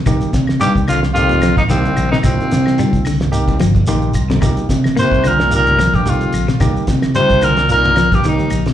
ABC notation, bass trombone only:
X:1
M:4/4
L:1/16
Q:"Swing 16ths" 1/4=110
K:Cm
V:1 name="Bass trombone" clef=bass
z4 G,,2 F,,2 F,,3 E,, C,,3 E,, | C,,6 z8 z2 | z4 C,2 B,,2 B,,3 G,, F,,3 z | z4 C,2 B,,2 B,,3 G,, E,,3 z |]